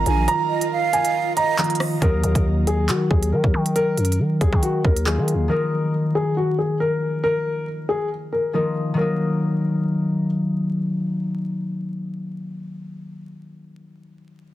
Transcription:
0.00 1.56 D#3 medium
0.00 1.57 F3 medium
0.00 1.58 A#3 medium
0.00 1.55 D#4 medium
0.00 1.98 F4 medium
0.00 1.98 A#4 medium
0.00 1.98 D#5 medium
0.00 0.25 A#5 medium
0.00 1.98 A#5 medium
0.06 0.27 A#1 loud
0.06 0.27 G#5 medium
0.06 closed hi-hat medium
0.28 0.69 A#5 loud
0.28 closed hi-hat medium
0.49 0.70 D#5 medium
0.61 closed hi-hat medium
0.72 1.33 F5 medium
0.93 1.12 G#5 medium
0.93 closed hi-hat medium
1.05 closed hi-hat medium
1.36 1.57 D#5 medium
1.36 1.55 A#5 medium
1.36 closed hi-hat medium
1.58 1.99 D#3 medium
1.58 2.07 F3 soft
1.58 2.01 A#3 soft
1.58 2.02 D#4 medium
1.58 1.77 A#5 medium
1.58 clap loud
1.58 closed hi-hat medium
1.64 closed hi-hat medium
1.70 closed hi-hat medium
1.75 closed hi-hat medium
1.80 cross-stick loud
1.80 open hi-hat medium
2.00 2.23 D#2 loud
2.00 5.04 D#3 medium
2.00 5.05 F#3 medium
2.00 5.06 A#3 medium
2.00 5.03 D#4 medium
2.00 2.43 A#4 loud
2.00 kick loud
2.00 closed hi-hat medium
2.24 2.35 D#2 loud
2.24 closed hi-hat medium
2.35 2.90 D#2 loud
2.35 kick medium
2.35 closed hi-hat medium
2.67 2.86 G#4 medium
2.67 closed hi-hat medium
2.89 3.10 D#3 loud
2.89 3.08 F#4 medium
2.89 clap loud
2.89 closed hi-hat medium
3.11 3.34 D#2 loud
3.11 3.29 G#4 medium
3.11 kick medium
3.23 closed hi-hat medium
3.32 3.43 D#3 loud
3.32 3.73 A#4 medium
3.44 3.53 D#2 loud
3.44 kick medium
3.54 3.99 D#3 loud
3.66 closed hi-hat medium
3.76 4.17 A#4 loud
3.76 closed hi-hat medium
3.97 4.21 F#2 loud
3.97 closed hi-hat medium
4.05 closed hi-hat medium
4.12 closed hi-hat medium
4.19 4.40 D#3 loud
4.41 4.52 D#2 loud
4.41 4.60 G#4 medium
4.41 kick loud
4.41 closed hi-hat medium
4.52 4.83 D#3 loud
4.52 kick loud
4.63 4.81 F#4 medium
4.63 closed hi-hat medium
4.85 5.19 D#2 loud
4.85 5.03 A#4 medium
4.85 kick medium
4.96 closed hi-hat medium
5.05 5.47 D#3 medium
5.05 5.55 F#3 soft
5.05 5.49 A#3 soft
5.05 5.50 F4 medium
5.05 5.47 G#4 medium
5.05 clap loud
5.18 5.35 D#3 loud
5.28 closed hi-hat medium
5.34 5.49 D#2 loud
5.48 8.52 D#3 medium
5.48 8.53 F3 medium
5.48 8.54 A#3 medium
5.48 8.51 D#4 medium
5.48 5.91 A#4 medium
6.15 6.34 G#4 medium
6.37 6.55 F#4 medium
6.58 6.77 G#4 medium
6.80 7.21 A#4 medium
7.24 7.64 A#4 loud
7.89 8.07 G#4 medium
8.32 8.51 A#4 medium
8.53 8.93 D#3 soft
8.53 9.03 F3 soft
8.53 8.98 A#3 soft
8.53 8.98 D#4 medium
8.53 8.73 A#4 medium
8.94 13.23 D#3 medium
8.94 13.26 F#3 medium
8.94 10.24 A#4 medium
8.99 13.28 A#3 medium
8.99 13.31 D#4 medium

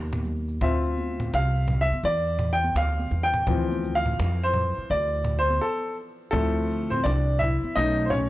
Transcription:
0.00 0.58 D#2 medium
0.13 cajon bass loud
0.13 cajon slap soft
0.13 high conga medium
0.13 shaker soft
0.25 low conga medium
0.25 shaker soft
0.48 cajon slap soft
0.48 shaker soft
0.61 1.29 D2 loud
0.61 3.43 C4 medium
0.61 3.43 F4 medium
0.61 1.80 E5 medium
0.61 cajon bass loud
0.61 shaker medium
0.84 shaker soft
0.98 high conga soft
0.98 shaker soft
1.20 cajon bass medium
1.20 shaker medium
1.33 1.89 C2 medium
1.33 1.83 F5 loud
1.33 cajon slap loud
1.33 shaker medium
1.55 shaker soft
1.68 cajon bass medium
1.68 low conga medium
1.68 shaker soft
1.81 2.03 E5 medium
1.91 muted upright bass stroke soft
1.91 cajon slap soft
1.91 high conga soft
1.91 shaker soft
2.03 2.72 E2 loud
2.03 2.54 D5 loud
2.03 shaker medium
2.28 shaker soft
2.39 cajon bass medium
2.39 shaker soft
2.53 2.77 G5 loud
2.63 cajon slap soft
2.63 high conga medium
2.63 shaker soft
2.75 3.09 D2 medium
2.75 3.26 F5 medium
2.75 cajon slap loud
2.75 shaker medium
2.99 cajon slap soft
2.99 high conga medium
2.99 shaker soft
3.11 3.45 E2 medium
3.11 low conga medium
3.11 shaker soft
3.23 3.97 G5 loud
3.34 cajon bass medium
3.34 cajon slap soft
3.34 shaker soft
3.47 4.15 D2 loud
3.47 6.29 E3 medium
3.47 6.29 F3 medium
3.47 6.29 C4 medium
3.47 cajon bass loud
3.47 shaker medium
3.71 high conga medium
3.71 shaker soft
3.84 cajon slap soft
3.84 high conga soft
3.84 shaker soft
3.95 4.44 F5 medium
4.06 cajon bass medium
4.06 shaker medium
4.19 4.74 F2 medium
4.19 cajon slap loud
4.19 low conga medium
4.19 shaker medium
4.41 4.87 C5 medium
4.41 shaker soft
4.54 cajon bass medium
4.54 low conga medium
4.54 shaker soft
4.77 muted upright bass stroke soft
4.77 cajon slap soft
4.77 shaker soft
4.90 5.58 D2 loud
4.90 5.39 D5 medium
4.90 shaker medium
5.14 shaker soft
5.24 cajon bass medium
5.24 shaker soft
5.39 5.63 C5 medium
5.49 cajon slap soft
5.49 high conga medium
5.49 shaker soft
5.61 5.95 A4 medium
6.31 7.01 D2 medium
6.31 7.71 F3 medium
6.31 6.87 A3 medium
6.31 6.91 C4 medium
6.31 7.40 E4 medium
6.31 6.92 A4 medium
6.31 cajon bass loud
6.31 shaker medium
6.56 shaker soft
6.71 shaker soft
6.90 7.04 C4 medium
6.90 7.04 C5 medium
6.90 cajon bass medium
6.90 shaker soft
7.04 7.60 C2 medium
7.04 7.39 D4 medium
7.04 7.41 D5 medium
7.04 cajon slap medium
7.04 low conga medium
7.04 shaker medium
7.28 shaker soft
7.39 7.74 E4 medium
7.39 7.76 E5 medium
7.39 cajon bass medium
7.39 low conga medium
7.39 shaker soft
7.63 muted upright bass stroke soft
7.63 cajon slap soft
7.63 high conga soft
7.63 shaker soft
7.75 8.29 B1 loud
7.75 8.29 A3 medium
7.75 8.11 C#4 soft
7.75 8.05 D#4 medium
7.75 8.07 D#5 loud
7.75 shaker medium
7.99 shaker soft
8.05 8.11 C5 medium
8.10 8.29 C#4 medium
8.10 8.29 C#5 medium
8.10 cajon bass medium
8.10 shaker soft

